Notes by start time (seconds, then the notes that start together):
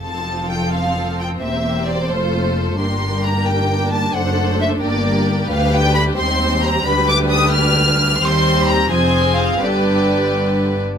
0.03 F1 F2 F3 C4 F4 A4 A5
0.50 G5
0.73 F5
1.20 G5
1.42 E1 E2 A#3 G4 C5 E5
1.88 D5
2.10 F1 F2 A3 F4 A4 C5
2.79 G1 G2 A#3 D4 G4 A#4 C6
3.24 A#5
3.47 G5
3.93 A5
4.15 F#1 F#2 A3 A4 C5 F#5
4.61 E5
4.82 G1 G2 A#3 G4 A#4 D5
5.50 D2 G3 D4 B4 F5
5.73 G5
5.94 B5
6.18 D#2 C4 C5 C6
6.63 A#5
6.86 D2 D4 G4 B4 B5
7.08 D6
7.31 D#6
7.53 F6
8.21 D#2 G3 C4 G4 C5 C6
8.68 A#5
8.91 F1 F2 F3 C4 G#4 C5 G#5
9.37 F5
9.61 G1 G2 D3 D4 G4 B4 D5